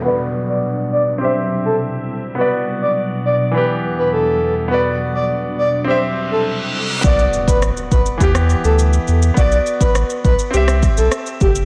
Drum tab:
SH |----------------|----------------|----------------|xxxxxxxxxxxxxxxx|
SD |----------------|----------------|----------------|----r----r------|
BD |----------------|----------------|----------------|o--o--o-o-------|

SH |xxxxxxxxxxxxxxxx|
SD |----r----r--r---|
BD |o--o--o---o---o-|